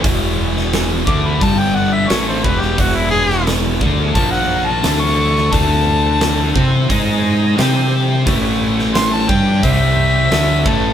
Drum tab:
HH |o---o---o---o---|o---o---o---o---|o---o---o---o---|o---o---o---o---|
SD |---oo-------o--o|---oo-------o--o|----o-------o---|---oo-------o---|
BD |o-----o-o-----o-|o-----o-o-------|o-----o-o-------|o-----o-o-----o-|